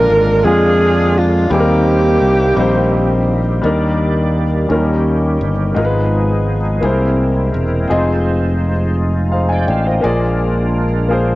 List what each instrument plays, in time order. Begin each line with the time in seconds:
Already playing: grand piano A#2 G#3 D4 F4 A#4, tonewheel organ D3 G#3 A#3 F4, saxophone section D4 F4 A#4
0.10 fingered electric bass G#1
0.44 fingered electric bass F2, grand piano G#3 D4 F4 G#4, saxophone section D4 F4 G#4
1.17 saxophone section F4
1.50 fingered electric bass D#2, tonewheel organ D#3 A#3 C4 G4, grand piano D#3 G3 C4 D#4 G#4, saxophone section A#3 C4 G4
1.60 grand piano A#4
2.21 fingered electric bass C2
2.56 fingered electric bass A#1, grand piano G3 C4 D#4 C5
3.62 fingered electric bass D#2, tonewheel organ D#3 A#3 G4 D5, grand piano D#3 G3 D4 D#4 A#4
4.68 fingered electric bass D#2, grand piano D#3 F#3 C#4 D#4 A#4, tonewheel organ D#3 A#3 C#4 F4
4.74 grand piano G3, tonewheel organ G4
5.41 fingered electric bass G1
5.74 fingered electric bass G#1, grand piano G#2 G#3 D#4 F4 A#4, tonewheel organ F3 B3 D#4 G#4
5.85 grand piano B4
6.81 fingered electric bass C2, grand piano C3 A#3 E4 G#4, tonewheel organ G#3 C4 E4 A#4
6.85 grand piano C5
7.54 fingered electric bass E1
7.88 fingered electric bass F1, tonewheel organ G#3 D#4 C5, grand piano C4 F4 G#4 D#5
7.92 tonewheel organ F4
9.32 grand piano C5 F5
9.49 tonewheel organ D5 G5, grand piano D#5 G#5
9.67 fingered electric bass A1, tonewheel organ C5 F5, grand piano D5 G5
9.86 tonewheel organ A#4 D#5, grand piano C5 F5
10.01 fingered electric bass A#1, grand piano A#2 A#3 F4 G#4 D5, tonewheel organ G#3 D4 F4 A#4
11.09 grand piano A#3 F4 G#4 C5